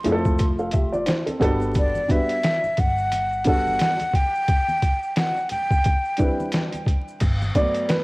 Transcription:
0.04 1.04 F1 medium
0.04 1.01 F3 medium
0.04 1.01 A3 medium
0.04 0.39 C4 medium
0.04 0.39 E4 medium
0.04 0.13 G#4 medium
0.04 closed hi-hat medium
0.04 low conga medium
0.04 maracas soft
0.12 0.43 A4 medium
0.25 kick medium
0.25 maracas medium
0.39 kick medium
0.39 closed hi-hat medium
0.39 high conga soft
0.39 maracas medium
0.59 0.73 A4 soft
0.59 0.72 F5 medium
0.59 maracas soft
0.71 0.92 G4 medium
0.71 0.92 E5 medium
0.71 kick medium
0.71 closed hi-hat medium
0.71 maracas soft
0.92 1.06 F4 medium
0.92 1.06 D5 medium
0.92 high conga medium
0.92 maracas soft
1.06 1.26 E4 medium
1.06 1.26 C5 medium
1.06 snare loud
1.06 closed hi-hat medium
1.06 high conga soft
1.06 maracas medium
1.26 1.59 C4 medium
1.26 1.40 A4 medium
1.26 closed hi-hat soft
1.26 high conga medium
1.26 maracas soft
1.39 1.94 G1 medium
1.39 1.97 G3 medium
1.39 1.98 B3 medium
1.39 1.98 D4 medium
1.39 1.98 F#4 medium
1.39 1.98 A4 loud
1.39 kick medium
1.39 closed hi-hat medium
1.39 low conga medium
1.39 maracas soft
1.61 maracas soft
1.74 2.13 D5 medium
1.74 kick loud
1.74 closed hi-hat medium
1.74 maracas medium
1.95 high conga medium
1.95 maracas soft
2.08 2.34 G3 medium
2.08 2.35 B3 medium
2.08 2.35 D4 medium
2.08 2.35 F#4 medium
2.08 2.36 B4 medium
2.08 2.81 E5 loud
2.08 kick medium
2.08 closed hi-hat medium
2.08 maracas soft
2.29 closed hi-hat medium
2.29 maracas soft
2.43 snare loud
2.43 closed hi-hat medium
2.43 maracas medium
2.64 muted upright bass stroke soft
2.64 maracas soft
2.77 3.76 G1 medium
2.77 3.47 F#5 loud
2.77 kick medium
2.77 closed hi-hat medium
2.77 low conga medium
2.77 maracas soft
2.98 maracas soft
3.12 closed hi-hat medium
3.12 high conga soft
3.12 maracas medium
3.32 maracas soft
3.44 3.95 G3 medium
3.44 3.96 B3 medium
3.44 3.96 D4 medium
3.44 3.96 F#4 medium
3.44 3.97 A4 medium
3.44 4.17 F#5 loud
3.44 kick medium
3.44 closed hi-hat medium
3.44 maracas soft
3.67 high conga medium
3.67 maracas soft
3.79 snare loud
3.79 closed hi-hat medium
3.79 high conga soft
3.79 maracas medium
4.00 closed hi-hat soft
4.00 high conga medium
4.00 maracas soft
4.14 5.17 G5 loud
4.14 kick medium
4.14 closed hi-hat medium
4.14 low conga medium
4.14 maracas soft
4.35 maracas soft
4.48 kick loud
4.48 closed hi-hat medium
4.48 maracas medium
4.68 high conga medium
4.68 maracas soft
4.82 kick medium
4.82 closed hi-hat medium
4.82 maracas soft
5.03 maracas soft
5.16 5.49 F#5 medium
5.16 snare loud
5.16 closed hi-hat medium
5.16 maracas medium
5.37 maracas soft
5.49 6.49 G5 medium
5.49 closed hi-hat medium
5.49 low conga medium
5.49 maracas soft
5.71 kick loud
5.71 maracas soft
5.84 kick medium
5.84 closed hi-hat medium
5.84 high conga medium
5.84 maracas medium
6.05 maracas soft
6.17 7.15 G3 medium
6.17 7.15 C4 medium
6.17 7.15 D4 medium
6.17 7.16 E4 medium
6.17 7.16 B4 medium
6.17 kick medium
6.17 closed hi-hat medium
6.17 low conga medium
6.17 maracas soft
6.40 high conga medium
6.40 maracas soft
6.52 snare loud
6.52 closed hi-hat medium
6.52 high conga soft
6.52 maracas medium
6.72 closed hi-hat soft
6.72 high conga medium
6.72 maracas soft
6.86 kick medium
6.86 closed hi-hat medium
6.86 low conga medium
6.86 maracas soft
7.08 maracas soft
7.20 7.48 G1 loud
7.20 kick loud
7.20 closed hi-hat medium
7.20 crash medium
7.20 maracas medium
7.42 high conga medium
7.42 maracas soft
7.55 8.03 F#3 medium
7.55 8.03 A3 medium
7.55 8.03 B3 medium
7.55 7.91 D5 medium
7.55 kick medium
7.55 closed hi-hat medium
7.55 maracas soft
7.75 closed hi-hat soft
7.75 maracas soft
7.89 8.04 B4 medium
7.89 snare loud
7.89 closed hi-hat medium
7.89 maracas medium

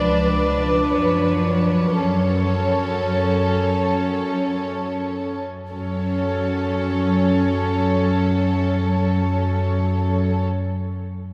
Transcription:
0.00 0.90 C#2 soft
0.00 0.36 F3 medium
0.00 1.95 D4 medium
0.00 1.96 B4 medium
0.00 0.85 D5 medium
0.37 0.88 F3 medium
0.89 5.40 F#2 soft
0.89 1.97 F3 medium
0.89 5.40 C#5 soft
1.99 5.04 F#3 soft
1.99 5.40 C#4 soft
1.99 5.41 A4 soft
5.71 10.44 F#2 soft
5.71 10.44 F#3 medium
5.71 10.43 C#4 soft
5.71 10.44 A4 soft
5.71 10.43 C#5 soft

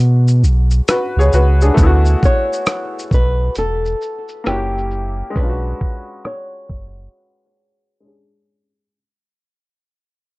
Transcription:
0.00 0.44 B2 medium
0.00 1.71 G#3 medium
0.00 0.83 C#4 medium
0.00 0.85 D4 medium
0.00 0.87 F#4 medium
0.00 0.83 B4 loud
0.28 shaker soft
0.43 0.81 B1 medium
0.43 shaker medium
0.71 shaker soft
0.88 1.17 F#4 medium
0.88 1.16 B4 medium
0.88 cross-stick loud
0.88 closed hi-hat medium
0.88 shaker medium
1.17 1.30 C#2 loud
1.17 1.33 G#4 medium
1.17 1.33 C#5 medium
1.17 shaker soft
1.33 1.71 C#2 medium
1.33 1.61 F#4 medium
1.33 1.61 B4 medium
1.33 shaker soft
1.61 2.05 D4 medium
1.61 2.04 G#4 medium
1.61 shaker medium
1.74 2.16 D2 loud
1.74 4.40 A3 medium
1.74 kick loud
1.74 closed hi-hat medium
1.74 shaker medium
1.78 4.42 B3 medium
1.83 4.45 E4 medium
1.83 4.47 F#4 medium
2.06 shaker soft
2.23 3.09 C#5 medium
2.23 kick medium
2.23 shaker soft
2.53 shaker soft
2.66 cross-stick loud
2.66 closed hi-hat medium
2.66 shaker medium
2.99 shaker medium
3.11 3.50 B1 medium
3.11 3.55 B4 medium
3.11 kick loud
3.11 shaker soft
3.55 3.95 E1 loud
3.55 4.50 A4 medium
3.55 closed hi-hat medium
3.55 shaker medium
3.86 shaker soft
4.02 shaker soft
4.29 shaker soft
4.44 5.23 F#1 loud
4.44 5.34 A#3 medium
4.44 5.33 C#4 medium
4.44 5.36 E4 medium
4.44 5.39 G4 medium
4.44 cross-stick loud
4.44 closed hi-hat medium
4.44 shaker medium
4.50 4.57 F#4 soft
4.56 5.41 G4 medium
4.78 shaker soft
4.91 shaker soft
5.30 7.97 G#3 medium
5.34 5.74 B1 loud
5.34 8.00 C#4 medium
5.34 6.26 B4 medium
5.34 kick loud
5.34 closed hi-hat medium
5.38 8.02 D4 medium
5.43 5.48 F4 medium
5.49 8.07 F#4 medium
5.81 kick medium
6.25 8.01 C#5 medium
6.25 cross-stick loud
6.25 closed hi-hat medium
6.69 7.08 F#1 medium
6.69 kick medium
8.00 8.92 G#3 medium
8.00 8.93 C#4 soft
8.05 8.94 D4 soft
8.05 8.95 G#4 medium

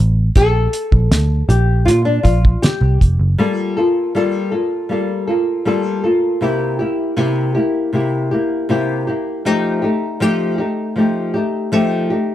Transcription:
0.00 0.29 A1 medium
0.35 0.66 A#1 loud
0.35 1.48 A4 loud
0.35 kick loud
0.35 closed hi-hat medium
0.73 closed hi-hat medium
0.92 1.08 A#1 medium
0.92 kick loud
1.11 1.42 D2 medium
1.11 snare loud
1.11 closed hi-hat medium
1.49 1.88 A#1 medium
1.49 1.84 G4 medium
1.49 closed hi-hat medium
1.85 2.17 A#2 loud
1.85 2.05 F4 medium
1.85 snare soft
1.85 closed hi-hat medium
2.05 2.23 D4 medium
2.23 2.55 A#1 loud
2.23 2.63 F4 medium
2.23 kick medium
2.23 closed hi-hat medium
2.45 kick medium
2.62 2.98 G4 medium
2.62 snare loud
2.62 closed hi-hat loud
2.81 2.97 C2 medium
3.01 3.17 F1 medium
3.01 kick medium
3.01 closed hi-hat medium
3.19 3.35 F#1 medium
3.38 3.77 G3 medium
3.38 3.77 A#3 medium
3.38 3.77 F4 medium
3.38 3.76 A4 medium
3.77 4.14 A#3 soft
3.77 4.15 F4 medium
3.77 4.15 A4 medium
4.15 4.53 G3 medium
4.15 4.53 A#3 medium
4.15 4.52 F4 medium
4.15 4.50 A4 loud
4.52 4.89 A#3 soft
4.52 4.90 F4 soft
4.52 4.90 A4 medium
4.89 5.28 G3 medium
4.89 5.29 A#3 medium
4.89 5.28 F4 medium
4.89 5.26 A4 medium
5.27 5.65 A#3 soft
5.27 5.66 F4 medium
5.27 5.66 A4 medium
5.65 6.04 G3 medium
5.65 6.04 A#3 medium
5.65 6.04 F4 medium
5.65 6.02 A4 loud
6.04 6.41 A#3 soft
6.04 6.42 F4 medium
6.04 6.42 A4 medium
6.41 6.80 C3 medium
6.41 6.80 A#3 medium
6.41 6.79 E4 loud
6.41 6.78 G4 loud
6.79 7.16 A#3 soft
6.79 7.17 E4 medium
6.79 7.17 G4 medium
7.17 7.55 C3 medium
7.17 7.56 A#3 medium
7.17 7.55 E4 medium
7.17 7.53 G4 medium
7.55 7.92 A#3 soft
7.55 7.93 E4 medium
7.55 7.93 G4 medium
7.93 8.31 C3 medium
7.93 8.32 A#3 medium
7.93 8.31 E4 medium
7.93 8.30 G4 medium
8.31 8.69 A#3 medium
8.31 8.69 E4 medium
8.31 8.70 G4 medium
8.69 9.07 C3 medium
8.69 9.08 A#3 medium
8.69 9.07 E4 medium
8.69 9.06 G4 medium
9.07 9.45 A#3 soft
9.07 9.46 E4 soft
9.07 9.46 G4 medium
9.45 9.83 F3 medium
9.45 9.83 A3 medium
9.45 9.82 D#4 medium
9.45 9.81 G4 medium
9.82 10.20 A3 medium
9.82 10.21 D#4 medium
9.82 10.21 G4 medium
10.20 10.59 F3 medium
10.20 10.59 A3 medium
10.20 10.58 D#4 medium
10.20 10.57 G4 loud
10.58 10.96 A3 soft
10.58 10.96 D#4 soft
10.58 10.97 G4 medium
10.96 11.35 F3 medium
10.96 11.35 A3 medium
10.96 11.34 D#4 medium
10.96 11.33 G4 medium
11.34 11.71 A3 medium
11.34 11.72 D#4 medium
11.34 11.73 G4 medium
11.72 12.11 F3 medium
11.72 12.11 A3 loud
11.72 12.11 D#4 loud
11.72 12.09 G4 loud
12.10 12.35 A3 soft
12.10 12.35 D#4 soft
12.10 12.35 G4 medium

